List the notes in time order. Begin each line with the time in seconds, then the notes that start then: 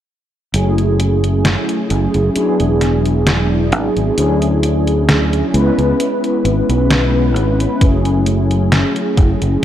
0.53 F#1 F#3 A3 C#4 E4 G#4, closed hi-hat
0.78 closed hi-hat
1.00 closed hi-hat
1.24 closed hi-hat
1.45 snare, closed hi-hat
1.69 closed hi-hat
1.90 F#1, closed hi-hat
2.14 F#1, closed hi-hat
2.34 F#3 B3 D4 E4 G#4, muted fingered electric bass stroke, closed hi-hat
2.60 E1, closed hi-hat
2.81 snare, closed hi-hat
3.06 closed hi-hat
3.27 snare, closed hi-hat
3.72 G#1, closed hi-hat
3.96 G#1, closed hi-hat
4.16 D2 F#3 C#4 D4 E4 G#4, closed hi-hat
4.42 closed hi-hat
4.63 closed hi-hat
4.87 closed hi-hat
5.09 snare, closed hi-hat
5.33 closed hi-hat
5.52 C#2 G#3 B3 C#4 E4 B4, closed hi-hat
5.78 C#2, closed hi-hat
6.00 closed hi-hat
6.24 closed hi-hat
6.45 G#1, closed hi-hat
6.69 B1, closed hi-hat
6.91 snare, closed hi-hat
7.36 G#1, closed hi-hat
7.60 closed hi-hat
7.79 F#1 F#3 A3 C#4 E4 G#4, kick, closed hi-hat
8.05 closed hi-hat
8.26 closed hi-hat
8.51 closed hi-hat
8.72 snare, closed hi-hat
8.96 closed hi-hat
9.18 F#1, kick, closed hi-hat
9.42 F#1, closed hi-hat
9.61 F#3